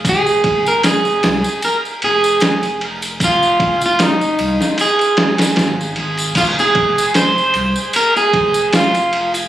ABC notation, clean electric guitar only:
X:1
M:4/4
L:1/16
Q:"Swing 16ths" 1/4=76
K:Fm
V:1 name="Clean electric guitar"
A3 B A4 B2 A4 z2 | F3 F E4 A6 z2 | F A3 c4 B A3 F3 z |]